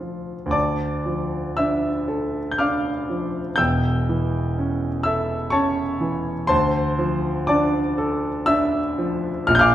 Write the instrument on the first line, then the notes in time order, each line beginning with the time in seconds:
grand piano
Already playing: D2 F4 A4 D5
0.01 F3
0.46 D2
0.51 D5 A5 D6
1.06 F3
1.57 D4 E5 E6
2.08 A4
2.52 G6
2.58 D4 F5 D6 F6
3.10 F3
3.56 E1 E2 G5 E6 G6
4.09 E3
4.58 C#4
5.03 A4 E5 E6
5.50 C#4 C#5 A5 C#6
6.01 E3
6.47 D2 C5 A5 C6
6.99 F3
7.47 D4 D5 A5 D6
7.98 A4
8.46 D4 E5 E6
8.99 F3
9.47 A#1 A#2 F6
9.55 G6
9.59 F5 D6 F6